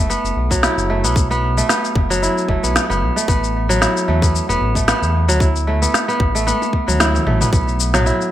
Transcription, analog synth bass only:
Already playing: F#1
0.24 F#1
0.36 B1
0.78 F#1
1.04 B1
1.96 F#1
2.49 F#1
2.64 B1
2.90 F#1
3.02 B1
3.28 A1
4.08 E2
4.49 E1
4.61 A1
5.02 E2
5.29 D2
6.20 A1
6.88 D2
7.27 A1
7.53 B1

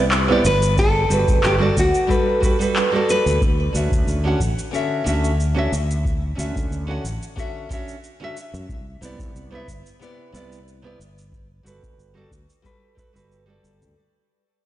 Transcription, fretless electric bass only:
Already playing: C2
0.45 G1
1.10 G1
1.28 G1
1.44 G1
1.77 D2
3.26 D2
3.42 D2
3.75 D2
3.92 D2
4.07 D2
4.40 A1
5.06 D2
5.72 D2
6.38 D2
6.56 D2
6.71 D2
7.04 A1
8.54 F#2
8.69 C2
9.02 C2
9.19 C2
9.35 C2
9.68 G1
10.33 C2
10.99 G1
11.65 G1
11.83 G1
11.98 G1
12.31 D2
13.15 G1
13.64 G1
13.82 D2

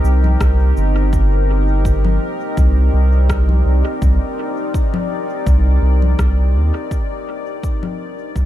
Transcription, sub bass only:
0.04 C2
0.40 C2
0.77 G1
2.57 C2
2.93 C2
3.66 C2
4.02 C2
5.46 C2
5.82 C2
6.19 C2
6.55 D#2
8.36 C2

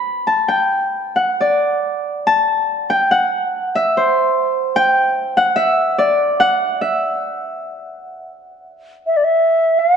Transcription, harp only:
Already playing: B5
0.27 A5
0.48 G5
1.16 F#5
1.41 D5
2.27 A5
2.90 G5
3.11 F#5
3.75 E5
3.97 C5
4.76 G5
5.37 F#5
5.56 E5
5.98 D5
6.40 F#5
6.81 E5

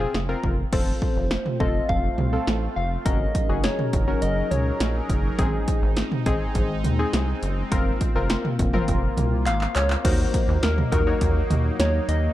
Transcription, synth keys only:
0.00 C4 F4 G#4
0.29 C4 F4 A#4
0.73 C4 F4 A4
1.60 C4 F4 A4
2.33 C4 F4 A4
3.06 C#4 F#4 A#4
3.49 C#4 F#4 G#4
4.08 C#4 F#4 A#4
5.39 C4 D#4 G#4
6.26 C4 D#4 G#4
6.99 C4 D#4 G#4
7.72 C4 F4 A#4
8.16 C4 F4 A#4
8.74 C4 F4 A#4
10.05 D#4 F#4 A#4
10.92 D#4 F#4 A#4
11.07 D#4 F#4 C#5

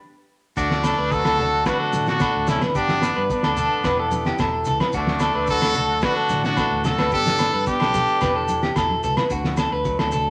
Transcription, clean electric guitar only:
0.57 F#4
0.85 A4
0.98 B4
1.26 A4
1.39 A4
1.66 B4
1.80 A4
2.08 F#4
2.22 A4
2.49 A4
2.62 B4
2.76 G4
3.03 muted clean electric guitar stroke
3.16 B4
3.44 A4
3.58 A4
3.85 B4
3.99 A4
4.26 G4
4.40 A4
4.68 A4
4.81 B4
4.94 F#4
5.22 A4
5.35 B4
5.62 A4
5.76 A4
6.03 B4
6.16 A4
6.44 F#4
6.57 A4
6.85 A4
6.99 B4
7.13 G4
7.40 A4
7.54 B4
7.81 A4
7.95 A4
8.22 B4
8.36 A4
8.63 G4
8.77 A4
9.04 A4
9.18 B4
9.32 F#4
9.59 A4
9.72 B4
10.00 A4
10.12 A4

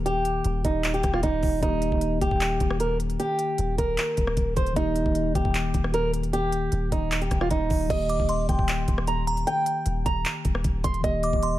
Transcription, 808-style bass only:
Already playing: D#1
0.45 D#1
0.65 D#1
1.04 D#1
1.23 D#1
1.43 D#1
1.63 D#1
1.92 D#1
2.22 D#1
2.61 D#1
3.59 D#1
3.78 D#1
4.18 D#1
4.37 D#1
4.57 D#1
4.76 D#1
5.06 D#1
5.35 D#1
5.74 D#1
6.72 D#1
6.92 D#1
7.31 D#1
7.51 D#1
7.70 D#1
7.90 D#1
8.20 D#1
8.49 D#1
8.88 D#1
9.86 D#1
10.06 D#1
10.45 D#1
10.65 D#1
10.84 D#1
11.04 D#1
11.33 D#1

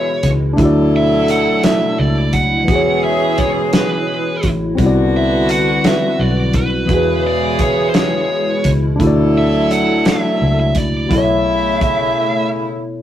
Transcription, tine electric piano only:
Already playing: E3 B3 F#4 G#4 B4
0.53 A3 D4
0.59 E4 F#4
0.65 D5
2.64 E3 B3
2.70 F#4 G#4
2.75 C#5
4.75 G3 C4
4.80 B3 E4
4.84 F#4 D5
6.85 E3 B3
6.91 F#4 G#4
6.97 B4
8.96 A3 D4
9.01 E4 F#4
9.07 D5
11.07 B2 B3
11.12 E4 A4
11.18 C#5

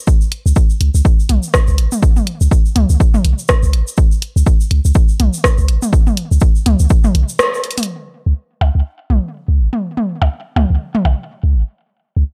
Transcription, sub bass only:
0.46 C#2
0.81 C#2
0.94 C#2
1.29 B1
1.68 C#2
1.78 G#1
2.41 C#2
2.76 C#2
2.90 C#2
3.25 B1
3.63 C#2
3.73 G#1
4.36 C#2
4.71 C#2
4.85 C#2
5.20 B1
5.58 C#2
5.69 G#1
6.31 C#2
6.66 C#2
6.80 C#2
7.15 B1
8.26 C#2
8.61 C#2
8.75 C#2
9.10 B1
9.48 C#2
9.59 G#1
10.22 C#2
10.56 C#2
10.70 C#2
11.05 B1
11.43 C#2
11.54 G#1
12.16 C#2

